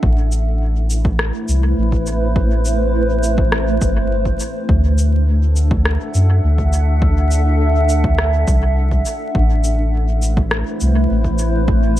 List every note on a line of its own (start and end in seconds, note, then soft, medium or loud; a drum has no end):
0.00 1.31 A1 loud
0.00 4.69 A3 medium
0.00 1.60 D4 medium
0.00 1.53 A4 medium
0.00 1.85 E5 medium
0.00 1.32 F#5 medium
0.00 kick loud
0.27 5.53 E4 medium
0.32 shaker soft
0.57 5.61 B4 medium
0.74 5.75 C5 medium
0.90 shaker medium
1.05 kick loud
1.19 cross-stick medium
1.48 1.74 C2 loud
1.48 shaker soft
1.77 3.79 A1 medium
1.92 kick medium
2.07 shaker soft
2.36 kick loud
2.65 shaker soft
3.23 shaker soft
3.38 kick loud
3.52 cross-stick medium
3.81 4.37 G1 medium
3.81 kick loud
3.81 shaker soft
4.25 kick medium
4.40 shaker soft
4.69 5.97 D2 loud
4.69 11.22 D4 medium
4.69 kick loud
4.77 11.22 A4 medium
4.98 11.14 F#5 medium
4.98 shaker soft
5.23 11.22 E5 loud
5.56 shaker soft
5.71 kick loud
5.85 cross-stick medium
6.14 6.40 F#2 loud
6.14 shaker soft
6.44 8.45 D2 medium
6.58 kick medium
6.73 shaker soft
7.02 kick loud
7.31 shaker soft
7.89 shaker soft
8.04 kick medium
8.18 cross-stick medium
8.47 9.03 C2 medium
8.47 kick medium
8.47 shaker soft
8.91 kick medium
9.06 shaker soft
9.35 10.63 A1 loud
9.35 12.00 A3 medium
9.35 kick loud
9.46 12.00 E4 medium
9.54 12.00 B4 medium
9.64 shaker soft
9.75 12.00 C5 medium
10.22 shaker soft
10.37 kick medium
10.51 cross-stick medium
10.81 11.07 C2 loud
10.81 shaker soft
11.10 12.00 A1 medium
11.24 kick medium
11.38 shaker soft
11.68 kick loud